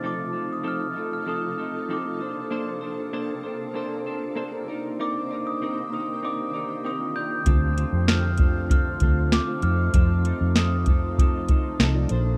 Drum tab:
HH |--------|--------|--------|xxxxxxxx|
SD |--------|--------|--------|--o---o-|
BD |--------|--------|--------|o--ooo--|

HH |xxxxxxxx|
SD |--o---o-|
BD |o--ooo--|